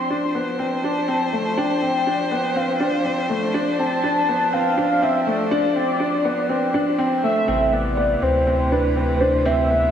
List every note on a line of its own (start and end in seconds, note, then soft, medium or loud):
0.00 7.44 F3 medium
0.00 7.44 D4 medium
0.00 7.44 C5 medium
0.00 0.32 C6 loud
0.10 0.32 D4 medium
0.35 0.56 B3 medium
0.59 0.80 C4 medium
0.59 1.60 A5 loud
0.84 1.05 D4 medium
1.08 1.30 C4 medium
1.33 1.54 A3 medium
1.58 1.79 D4 medium
1.58 2.58 G5 loud
1.82 2.03 C4 medium
2.07 2.28 D4 medium
2.31 2.53 B3 medium
2.56 2.77 C4 medium
2.56 3.30 F5 medium
2.80 3.02 D4 medium
3.05 3.26 C4 medium
3.29 3.51 A3 medium
3.54 3.76 D4 medium
3.79 4.00 C4 medium
3.79 4.55 A5 loud
4.04 4.25 D4 medium
4.28 4.50 B3 medium
4.53 4.74 C4 medium
4.53 5.05 F5 loud
4.78 4.99 D4 medium
5.02 5.23 C4 medium
5.02 5.29 E5 loud
5.27 5.48 A3 medium
5.27 6.99 D5 loud
5.51 5.73 D4 loud
5.76 5.97 C4 medium
6.00 6.21 D4 medium
6.25 6.46 B3 medium
6.49 6.71 C4 medium
6.74 6.95 D4 medium
6.98 7.20 C4 medium
7.23 7.45 A3 medium
7.23 7.75 E5 loud
7.48 8.16 A1 loud
7.48 9.91 C3 medium
7.48 9.91 E3 medium
7.48 9.91 A3 medium
7.48 7.69 C4 medium
7.73 7.94 B3 medium
7.73 8.25 D5 medium
7.97 8.18 B3 medium
8.22 9.91 D2 medium
8.22 8.43 C4 medium
8.22 8.73 C5 medium
8.47 8.68 C4 medium
8.72 8.93 D4 medium
8.72 9.22 B4 medium
8.96 9.17 C4 medium
9.21 9.42 D4 medium
9.21 9.47 C5 medium
9.45 9.66 C4 loud
9.45 9.91 E5 loud
9.70 9.91 B3 medium